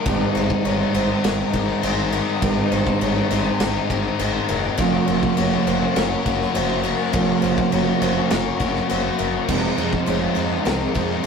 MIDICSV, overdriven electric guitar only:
0, 0, Header, 1, 2, 480
1, 0, Start_track
1, 0, Tempo, 588813
1, 50, Time_signature, 4, 2, 24, 8
1, 9182, End_track
2, 0, Start_track
2, 0, Title_t, "Overdriven electric guitar"
2, 0, Program_c, 0, 29
2, 38, Note_on_c, 0, 44, 83
2, 51, Note_on_c, 0, 51, 92
2, 55, Note_on_c, 0, 56, 100
2, 57, Note_on_c, 0, 60, 104
2, 61, Note_on_c, 0, 63, 103
2, 520, Note_off_c, 0, 51, 0
2, 530, Note_on_c, 0, 51, 74
2, 537, Note_off_c, 0, 56, 0
2, 541, Note_on_c, 0, 56, 81
2, 542, Note_off_c, 0, 60, 0
2, 545, Note_on_c, 0, 60, 87
2, 546, Note_off_c, 0, 63, 0
2, 549, Note_on_c, 0, 63, 88
2, 770, Note_off_c, 0, 63, 0
2, 773, Note_on_c, 0, 63, 75
2, 780, Note_off_c, 0, 60, 0
2, 784, Note_on_c, 0, 60, 66
2, 795, Note_off_c, 0, 56, 0
2, 798, Note_on_c, 0, 56, 64
2, 1013, Note_off_c, 0, 51, 0
2, 1232, Note_off_c, 0, 63, 0
2, 1242, Note_on_c, 0, 63, 72
2, 1245, Note_off_c, 0, 56, 0
2, 1246, Note_off_c, 0, 60, 0
2, 1255, Note_on_c, 0, 56, 59
2, 1255, Note_on_c, 0, 60, 67
2, 1480, Note_off_c, 0, 56, 0
2, 1483, Note_on_c, 0, 51, 69
2, 1490, Note_on_c, 0, 56, 79
2, 1491, Note_off_c, 0, 60, 0
2, 1492, Note_off_c, 0, 63, 0
2, 1500, Note_on_c, 0, 60, 73
2, 1502, Note_on_c, 0, 63, 84
2, 1956, Note_off_c, 0, 51, 0
2, 1962, Note_off_c, 0, 44, 0
2, 1962, Note_off_c, 0, 56, 0
2, 1965, Note_on_c, 0, 44, 86
2, 1966, Note_on_c, 0, 51, 101
2, 1970, Note_off_c, 0, 60, 0
2, 1972, Note_on_c, 0, 56, 94
2, 1975, Note_off_c, 0, 63, 0
2, 1980, Note_on_c, 0, 60, 97
2, 1985, Note_on_c, 0, 63, 105
2, 2431, Note_off_c, 0, 51, 0
2, 2439, Note_off_c, 0, 56, 0
2, 2441, Note_on_c, 0, 51, 79
2, 2449, Note_off_c, 0, 60, 0
2, 2449, Note_on_c, 0, 56, 75
2, 2450, Note_off_c, 0, 63, 0
2, 2459, Note_on_c, 0, 60, 84
2, 2460, Note_on_c, 0, 63, 84
2, 2674, Note_off_c, 0, 63, 0
2, 2684, Note_on_c, 0, 63, 84
2, 2687, Note_off_c, 0, 60, 0
2, 2693, Note_off_c, 0, 44, 0
2, 2694, Note_off_c, 0, 56, 0
2, 2697, Note_on_c, 0, 60, 75
2, 2704, Note_on_c, 0, 56, 66
2, 2931, Note_off_c, 0, 51, 0
2, 3170, Note_off_c, 0, 63, 0
2, 3177, Note_off_c, 0, 60, 0
2, 3179, Note_on_c, 0, 63, 70
2, 3186, Note_off_c, 0, 56, 0
2, 3187, Note_on_c, 0, 60, 75
2, 3196, Note_on_c, 0, 56, 57
2, 3420, Note_on_c, 0, 51, 78
2, 3424, Note_off_c, 0, 56, 0
2, 3428, Note_off_c, 0, 60, 0
2, 3431, Note_off_c, 0, 63, 0
2, 3434, Note_on_c, 0, 56, 78
2, 3438, Note_on_c, 0, 60, 83
2, 3440, Note_on_c, 0, 63, 84
2, 3887, Note_off_c, 0, 51, 0
2, 3889, Note_on_c, 0, 42, 100
2, 3894, Note_off_c, 0, 56, 0
2, 3894, Note_on_c, 0, 49, 93
2, 3896, Note_off_c, 0, 60, 0
2, 3897, Note_off_c, 0, 63, 0
2, 3898, Note_on_c, 0, 54, 96
2, 3899, Note_on_c, 0, 58, 91
2, 3905, Note_on_c, 0, 61, 102
2, 3910, Note_on_c, 0, 66, 110
2, 4368, Note_off_c, 0, 54, 0
2, 4371, Note_on_c, 0, 54, 82
2, 4374, Note_off_c, 0, 58, 0
2, 4377, Note_on_c, 0, 58, 88
2, 4381, Note_off_c, 0, 61, 0
2, 4384, Note_on_c, 0, 61, 82
2, 4385, Note_off_c, 0, 66, 0
2, 4388, Note_on_c, 0, 66, 86
2, 4616, Note_off_c, 0, 66, 0
2, 4619, Note_off_c, 0, 49, 0
2, 4619, Note_on_c, 0, 66, 76
2, 4621, Note_off_c, 0, 61, 0
2, 4624, Note_on_c, 0, 61, 73
2, 4628, Note_off_c, 0, 58, 0
2, 4630, Note_off_c, 0, 54, 0
2, 4631, Note_on_c, 0, 58, 70
2, 4633, Note_on_c, 0, 54, 65
2, 5090, Note_off_c, 0, 66, 0
2, 5096, Note_off_c, 0, 61, 0
2, 5098, Note_off_c, 0, 58, 0
2, 5100, Note_on_c, 0, 66, 74
2, 5106, Note_on_c, 0, 61, 67
2, 5107, Note_off_c, 0, 54, 0
2, 5108, Note_on_c, 0, 58, 58
2, 5117, Note_on_c, 0, 54, 58
2, 5320, Note_off_c, 0, 54, 0
2, 5329, Note_off_c, 0, 58, 0
2, 5329, Note_on_c, 0, 54, 81
2, 5334, Note_off_c, 0, 61, 0
2, 5338, Note_on_c, 0, 58, 78
2, 5342, Note_off_c, 0, 66, 0
2, 5344, Note_on_c, 0, 61, 84
2, 5352, Note_on_c, 0, 66, 76
2, 5802, Note_off_c, 0, 54, 0
2, 5805, Note_off_c, 0, 42, 0
2, 5806, Note_on_c, 0, 49, 98
2, 5807, Note_off_c, 0, 58, 0
2, 5808, Note_on_c, 0, 42, 102
2, 5809, Note_off_c, 0, 61, 0
2, 5812, Note_on_c, 0, 54, 97
2, 5815, Note_off_c, 0, 66, 0
2, 5817, Note_on_c, 0, 58, 100
2, 5819, Note_on_c, 0, 61, 94
2, 5824, Note_on_c, 0, 66, 98
2, 6279, Note_off_c, 0, 54, 0
2, 6289, Note_on_c, 0, 54, 76
2, 6290, Note_off_c, 0, 58, 0
2, 6292, Note_off_c, 0, 61, 0
2, 6299, Note_on_c, 0, 58, 78
2, 6302, Note_on_c, 0, 61, 84
2, 6303, Note_off_c, 0, 66, 0
2, 6313, Note_on_c, 0, 66, 89
2, 6514, Note_off_c, 0, 66, 0
2, 6520, Note_off_c, 0, 61, 0
2, 6524, Note_on_c, 0, 66, 74
2, 6526, Note_off_c, 0, 58, 0
2, 6529, Note_off_c, 0, 54, 0
2, 6530, Note_on_c, 0, 61, 69
2, 6533, Note_off_c, 0, 49, 0
2, 6535, Note_off_c, 0, 42, 0
2, 6536, Note_on_c, 0, 58, 64
2, 6539, Note_on_c, 0, 54, 64
2, 6992, Note_off_c, 0, 66, 0
2, 7002, Note_off_c, 0, 61, 0
2, 7002, Note_on_c, 0, 66, 73
2, 7007, Note_off_c, 0, 58, 0
2, 7012, Note_off_c, 0, 54, 0
2, 7012, Note_on_c, 0, 61, 64
2, 7016, Note_on_c, 0, 58, 64
2, 7021, Note_on_c, 0, 54, 57
2, 7229, Note_off_c, 0, 54, 0
2, 7234, Note_off_c, 0, 58, 0
2, 7239, Note_on_c, 0, 54, 78
2, 7244, Note_off_c, 0, 61, 0
2, 7244, Note_on_c, 0, 58, 74
2, 7248, Note_off_c, 0, 66, 0
2, 7253, Note_on_c, 0, 61, 84
2, 7257, Note_on_c, 0, 66, 85
2, 7714, Note_off_c, 0, 54, 0
2, 7716, Note_off_c, 0, 58, 0
2, 7721, Note_off_c, 0, 61, 0
2, 7723, Note_off_c, 0, 66, 0
2, 7723, Note_on_c, 0, 41, 91
2, 7727, Note_on_c, 0, 48, 91
2, 7730, Note_on_c, 0, 53, 100
2, 7735, Note_on_c, 0, 56, 100
2, 7738, Note_on_c, 0, 63, 92
2, 7739, Note_on_c, 0, 60, 95
2, 7945, Note_off_c, 0, 63, 0
2, 7948, Note_on_c, 0, 63, 59
2, 7954, Note_off_c, 0, 60, 0
2, 7957, Note_on_c, 0, 60, 62
2, 7960, Note_off_c, 0, 56, 0
2, 7963, Note_on_c, 0, 56, 57
2, 7969, Note_off_c, 0, 53, 0
2, 7973, Note_on_c, 0, 53, 54
2, 8196, Note_off_c, 0, 53, 0
2, 8199, Note_on_c, 0, 53, 83
2, 8203, Note_off_c, 0, 56, 0
2, 8206, Note_on_c, 0, 56, 74
2, 8208, Note_off_c, 0, 60, 0
2, 8211, Note_off_c, 0, 48, 0
2, 8212, Note_on_c, 0, 60, 75
2, 8217, Note_off_c, 0, 63, 0
2, 8220, Note_on_c, 0, 63, 78
2, 8245, Note_off_c, 0, 41, 0
2, 8438, Note_off_c, 0, 63, 0
2, 8441, Note_on_c, 0, 63, 71
2, 8449, Note_off_c, 0, 60, 0
2, 8451, Note_off_c, 0, 56, 0
2, 8452, Note_on_c, 0, 60, 71
2, 8454, Note_on_c, 0, 56, 65
2, 8459, Note_off_c, 0, 53, 0
2, 8463, Note_on_c, 0, 53, 63
2, 8681, Note_on_c, 0, 41, 86
2, 8685, Note_off_c, 0, 53, 0
2, 8685, Note_off_c, 0, 60, 0
2, 8687, Note_on_c, 0, 48, 92
2, 8688, Note_off_c, 0, 63, 0
2, 8689, Note_on_c, 0, 53, 100
2, 8692, Note_off_c, 0, 56, 0
2, 8695, Note_on_c, 0, 60, 107
2, 8696, Note_on_c, 0, 56, 92
2, 8697, Note_on_c, 0, 63, 98
2, 8912, Note_off_c, 0, 63, 0
2, 8920, Note_off_c, 0, 60, 0
2, 8922, Note_on_c, 0, 63, 71
2, 8930, Note_on_c, 0, 60, 65
2, 8933, Note_off_c, 0, 56, 0
2, 8936, Note_on_c, 0, 56, 67
2, 8940, Note_off_c, 0, 53, 0
2, 8943, Note_on_c, 0, 53, 54
2, 9152, Note_off_c, 0, 53, 0
2, 9155, Note_on_c, 0, 53, 72
2, 9157, Note_off_c, 0, 56, 0
2, 9158, Note_off_c, 0, 60, 0
2, 9159, Note_off_c, 0, 63, 0
2, 9166, Note_off_c, 0, 41, 0
2, 9168, Note_off_c, 0, 48, 0
2, 9182, Note_off_c, 0, 53, 0
2, 9182, End_track
0, 0, End_of_file